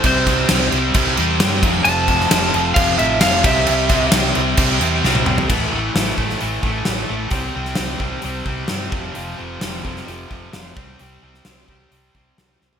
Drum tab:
CC |x-x-x-x-x-x-x-x-|x-x-x-x-x-x-x-x-|x-x-x-x-x-x-----|x---------------|
HH |----------------|----------------|----------------|----o---o---o---|
SD |--o-o-------o---|---oo-------o---|--o-o-------o---|----o--o----o---|
T1 |----------------|----------------|-------------o--|----------------|
T2 |----------------|----------------|--------------o-|----------------|
FT |----------------|----------------|---------------o|----------------|
BD |o-o-----o-----o-|--o-----o-----o-|--o-----o-------|o-----o---o-----|

CC |----------------|----------------|----------------|
HH |o---o---o---o---|o---o---o---o---|o---o---o---o---|
SD |---oo-------o---|----o--o----o---|---oo-------o-o-|
T1 |----------------|----------------|----------------|
T2 |----------------|----------------|----------------|
FT |----------------|----------------|---------------o|
BD |o-----o---o---o-|------o---o---o-|------o---o-----|